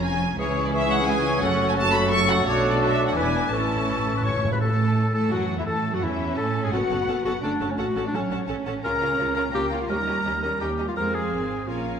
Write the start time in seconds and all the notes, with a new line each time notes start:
Already playing: F1 F2 F3 C#4 F4 G#4
0.04 G#5
0.38 C#2 E3 C#4 E4 G#4 C#5 C#6
0.65 D5
0.72 E3 G#4 E5 C#6
0.90 F#5
1.07 E3 G#4 G#5 C#6
1.42 F#1 F#2 F#3 A3 F#4 A4 F#5 C#6
1.68 G#5
1.76 F#3 A4 A5 C#6
1.93 B5
2.10 F#3 A4 C#6
2.28 F#5
2.46 B1 B2 F#3 D4 F#4 A4 C#5 D6
2.72 D5
2.81 E5
3.08 F#5
3.15 E1 E2 E3 B3 D4 E4 B4 G#5 D6
3.51 A1 A2 E3 A3 C#4 E4 A4 A5 C#6
3.60 A2
3.67 A2
3.75 A2
3.89 A2 A4
3.99 A2
4.06 A2
4.13 A2 B4
4.21 A2 C#5 C#6
4.29 A2
4.37 A2
4.45 A2
4.52 A2 B4 B5
4.59 A2 E3 A3 A4 A5
5.13 A2 A3 A4 A5
5.31 F#2 F#3 F#4 F#5
5.57 E2 E3 E4 E5
5.66 A2 A3 A4 A5
5.93 F#2 F#3 F#4 F#5
6.01 E2 E3 C#4 E4 E5
6.37 A2 A3 A4 A5
6.64 G#2 G#3 G#4 G#5
6.72 F#1 B3 C#4 F#4 A4 F#5 A5
6.90 F#1 C#4 A4 F#5 A5
7.08 F#1 C#4 A4 F#5 A5
7.25 F#1 C#4 F#4 A4 F#5 A5
7.42 F#1 A3 C#4 D4 A4 D5 F#5 A5
7.60 F#1 C#4 A4 F#5 A5
7.69 C#4 C#5
7.78 A1 C#4 F#4 A4 F#5 A5
7.96 A1 C#4 A4 F#5 A5
8.04 D4 D5
8.13 A1 F#3 C#4 A4 C#5 F#5 A5
8.30 A1 C#4 A4 F#5 A5
8.47 A1 C#4 A4 F#5 A5
8.66 A1 C#4 A4 F#5 A5
8.83 C#2 C#4 F4 A#4 F5 A#5
9.01 C#4 F4 F5 A#5
9.18 C#2 C#4 F4 F5 A#5
9.35 C#4 F4 A#4 F5 A#5
9.53 C#2 A#3 C#4 F4 G4 F5 G5 A#5
9.70 C#4 F4 F5 A#5
9.80 F4 F5
9.88 D#2 G3 C#4 G4 A#4 D#5 A#5
10.07 C#4 G4 D#5 A#5
10.24 D#2 C#4 G4 D#5 A#5
10.42 C#4 G4 A#4 D#5 A#5
10.60 D#2 C#4 G4 D#5 G5 A#5
10.77 C#4 G4 D#5 A#5
10.87 F4 F5
10.95 F2 G#3 C4 G#4 A#4 C5 F5 A#5
11.14 G#4 G#5
11.32 G#1 C4
11.67 A#1 A#3 C#4 F4 A#4 C#5 F5 G#5